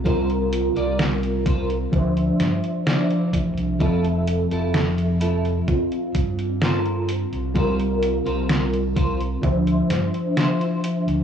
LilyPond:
<<
  \new Staff \with { instrumentName = "Clean electric guitar" } { \time 4/4 \key c \mixolydian \tempo 4 = 64 <f' bes' c''>16 r8 <f' bes' d''>16 r8 <f' bes' c''>16 r4 r16 <e' f' d''>8 r8 | <e' f' a'>16 r8 <e' f' a'>16 r8 <e' f' a'>16 r4 r16 <f' a' bes' c''>8 r8 | <f' bes' c''>16 r8 <f' bes' c''>16 r8 <f' bes' c''>16 r4 r16 <e' f' c''>8 r8 | }
  \new Staff \with { instrumentName = "FM electric piano" } { \time 4/4 \key c \mixolydian <g c' f' bes'>2 <f d' c'' e''>2 | <f c' a' e''>2 <c' f'>2 | <g c' f' bes'>2 <f d' c'' e''>2 | }
  \new Staff \with { instrumentName = "Fingered electric bass" } { \clef bass \time 4/4 \key c \mixolydian c,8. c,4~ c,16 d,16 r16 g,16 r8. a,,16 c,16 | f,,8. f,,4~ f,,16 r8 g,4~ g,16 c,16~ | c,8. c,4~ c,16 d,16 r16 g,16 r4 d,16 | }
  \new DrumStaff \with { instrumentName = "Drums" } \drummode { \time 4/4 <hh bd>16 hh16 hh16 hh16 <hh sn>16 hh16 <hh bd>16 hh16 <hh bd>16 hh16 <hh sn>16 hh16 <hh sn>16 hh16 <hh bd>16 hh16 | <hh bd>16 hh16 hh16 hh16 <hh sn>16 hh16 hh16 hh16 <hh bd>16 hh16 <hh bd>16 hh16 <hh sn>16 hh16 hh16 hh16 | <hh bd>16 hh16 hh16 hh16 <hh sn>16 hh16 <hh bd>16 hh16 <hh bd>16 hh16 <hh sn>16 hh16 <hh sn>16 hh16 hh16 hh16 | }
>>